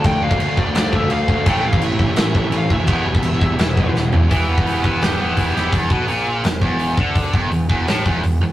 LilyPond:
<<
  \new Staff \with { instrumentName = "Lead electric guitar" } { \time 4/4 \key e \phrygian \tempo 4 = 169 g''8 f''4 d''8 d''8 e''8 f''4 | g''8 f''8 e''4 e''4 f''8 e''8~ | e''2. r4 | r1 |
r1 | r1 | }
  \new Staff \with { instrumentName = "Overdriven electric guitar" } { \time 4/4 \key e \phrygian <d a d' f'>2 <d a d' f'>2 | <a, e a c' e'>2 <a, e a c' e'>2 | <e g b e'>2 <e g b e'>2 | <e b e' g' b'>2.~ <e b e' g' b'>8 <e b e' g' b'>8 |
r1 | r1 | }
  \new Staff \with { instrumentName = "Distorted electric guitar" } { \clef bass \time 4/4 \key e \phrygian <d a>8 <d a>16 <d a>16 <d a>16 <d a>16 <d a>16 <d a>16 <d a>8 <d a>16 <d a>16 <d a>8 <d a>16 <d a>16 | <a, e a>8 <a, e>16 <a, e>16 <a, e>16 <a, e>16 <a, e>16 <a, e>16 <a, e>8 <a, e>16 <a, e>16 <a, e>8 <a, e>16 <a, e>16 | <e, b, e>8 <e, b,>16 <e, b,>16 <e, b,>16 <e, b,>16 <e, b,>16 <e, b,>16 <e, b,>8 <e, b,>16 <e, b,>16 <e, b,>8 <e, b,>16 <e, b,>16 | e8 g8 b8 e'8 b8 e'8 g8 b8 |
e,8 b,8 ais,4 e,8 e,4 d8~ | d8 g,8 e,8 e,8 a,8 e,8 e,8 e,8 | }
  \new Staff \with { instrumentName = "Distorted electric guitar" } { \clef bass \time 4/4 \key e \phrygian <d a>8 <d a>16 <d a>16 <d a>16 <d a>16 <d a>16 <d a>16 <d a>8 <d a>16 <d a>16 <d a>8 <d a>16 <d a>16 | <a, e a>8 <a, e>16 <a, e>16 <a, e>16 <a, e>16 <a, e>16 <a, e>16 <a, e>8 <a, e>16 <a, e>16 <a, e>8 <a, e>16 <a, e>16 | <e, b, e>8 <e, b,>16 <e, b,>16 <e, b,>16 <e, b,>16 <e, b,>16 <e, b,>16 <e, b,>8 <e, b,>16 <e, b,>16 <e, b,>8 <e, b,>16 <e, b,>16 | e8 b8 e8 b8 g'8 b8 e'8 g'8 |
e,8 b,8 ais,4 e,8 e,4 d8~ | d8 g,8 e,8 e,8 a,8 e,8 e,8 e,8 | }
  \new Staff \with { instrumentName = "Picked electric bass" } { \clef bass \time 4/4 \key e \phrygian d,8 d,8 d,8 d,8 d,8 d,8 d,8 d,8 | a,,8 a,,8 a,,8 a,,8 a,,8 a,,8 a,,8 d,8 | e,,8 e,,8 e,,8 e,,8 e,,8 e,,8 e,,8 e,,8 | e,,8 e,,8 e,,8 e,,8 e,,8 e,,8 e,,8 e,,8 |
e,,8 b,,8 ais,,4 e,,8 e,,4 d,8~ | d,8 g,,8 e,,8 e,,8 a,,8 e,,8 e,,8 e,,8 | }
  \new DrumStaff \with { instrumentName = "Drums" } \drummode { \time 4/4 <cymc bd>8. bd16 cymc8 bd8 <cymc sn>8 bd8 cymc8 bd8 | <cymc bd>8. bd16 cymc8 bd8 <cymc sn>8 bd8 cymc8 bd8 | <cymc bd>8. bd16 cymc8 bd8 <cymc sn>8 bd8 sn8 tomfh8 | <hho bd>8. bd16 hho8 bd8 <hho sn>4 <hho bd>8 sn8 |
<hho bd>8 bd8 hho4 <hho sn>8 bd8 hho8 bd8 | <hho bd>8 bd8 hho8 bd8 <hho sn>8 bd8 hho4 | }
>>